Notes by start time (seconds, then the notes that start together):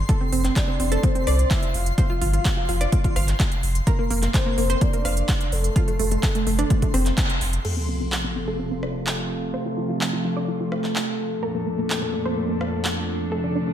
Already playing: C6
0.09 A4, kick, closed hi-hat
0.21 C4
0.32 F1 C4, open hi-hat
0.44 C4, clap, closed hi-hat
0.56 D5, kick, clap, closed hi-hat
0.68 C4
0.80 F1 C4, open hi-hat
0.92 A4, cross-stick, closed hi-hat
1.03 C4 C5, kick, closed hi-hat
1.15 C4, closed hi-hat
1.27 C2 D5, cross-stick, open hi-hat
1.39 closed hi-hat
1.51 E5, kick, clap, closed hi-hat
1.63 closed hi-hat
1.74 F1 F5, open hi-hat
1.86 closed hi-hat
1.98 C5, kick, closed hi-hat
2.10 F4
2.21 G1 F4, open hi-hat
2.33 F4, closed hi-hat
2.45 kick, clap, closed hi-hat
2.57 F4
2.69 F1 F4, open hi-hat
2.81 D5, cross-stick, closed hi-hat
2.92 F4, kick, closed hi-hat
3.04 F4, kick, closed hi-hat
3.16 G1 F5, cross-stick, open hi-hat
3.28 clap, closed hi-hat
3.40 kick, clap, closed hi-hat
3.52 closed hi-hat
3.63 F1, open hi-hat
3.75 closed hi-hat
3.87 A#4, kick, closed hi-hat
3.99 A#3
4.10 F1 A#3, open hi-hat
4.22 A#3, clap, closed hi-hat
4.34 C5, kick, clap, closed hi-hat
4.46 A#3
4.58 F1 A#3, open hi-hat
4.70 C5, cross-stick, closed hi-hat
4.81 A#3 D5, kick, closed hi-hat
4.93 A#3, closed hi-hat
5.05 F1 F5, cross-stick, open hi-hat
5.17 closed hi-hat
5.29 kick, clap, closed hi-hat
5.41 closed hi-hat
5.52 F1 A4, open hi-hat
5.64 closed hi-hat
5.76 F4, kick, closed hi-hat
5.88 A3, closed hi-hat
5.99 F1 A3, open hi-hat
6.11 A3, closed hi-hat
6.23 kick, clap, closed hi-hat
6.35 A3, closed hi-hat
6.47 F1 A3, open hi-hat
6.59 D4, cross-stick, closed hi-hat
6.70 A3, kick, closed hi-hat
6.82 A3, kick, closed hi-hat
6.94 F1 C4, cross-stick, open hi-hat
7.06 clap, closed hi-hat
7.18 kick, clap, closed hi-hat
7.30 closed hi-hat
7.41 F1, open hi-hat
7.53 closed hi-hat
7.65 C3 F3 A3 F4 A4, crash, sub drop
7.77 C4
7.88 C4
8.00 C4
8.12 clap
8.24 C4
8.36 C4
8.48 A4
8.59 C4
8.71 C4
8.83 D5, cross-stick
9.07 clap
9.54 C5
9.66 F4
9.77 F4
9.89 F4
10.01 clap
10.13 F4
10.25 F4
10.37 D5
10.48 F4
10.60 F4
10.72 F5, cross-stick
10.84 clap
10.96 clap
11.43 F2 A#2 F3 D4 A#4
11.55 A#3
11.66 A#3
11.78 A#3
11.90 clap
12.02 A#3
12.14 A#3
12.26 C5
12.37 A#3
12.49 A#3
12.61 F5, cross-stick
12.85 clap
13.32 C3 A3 A4
13.44 D4
13.55 D4
13.67 D4